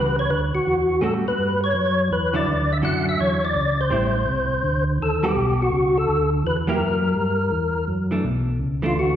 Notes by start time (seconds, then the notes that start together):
Already playing: C#2 B4
0.19 C#5
0.30 D2 B4
0.54 D2 F#4
0.67 E2
1.01 A2 G3 C#4 F#4 G#4 A4
1.26 A2 B4
1.38 G2
1.64 C#5
1.75 F#2
2.11 E2 B4
2.33 D3 F#3 C#4 E4 D5
2.47 D2
2.73 E5
2.82 F#2 D3 F#3 C#4 E4 F#5
3.09 E5
3.19 E2 C#5
3.45 D5
3.55 C#2
3.81 C5
3.90 A1 G3 C4 E4
4.28 C2
4.64 D2
5.00 D#2 A4
5.23 G3 B3 F#4 G4 A4
5.35 B1
5.62 F#4
5.71 C#2
5.97 A4
6.08 D2
6.44 E2 B4
6.67 F#3 A#3 E4 G4 A#4
6.79 F#2
7.16 G2
7.52 E2
7.88 F#2
8.11 E3 A3 D4
8.24 B1
8.59 C#2
8.82 E3 A3 D4 F4
8.95 D2
8.99 F#4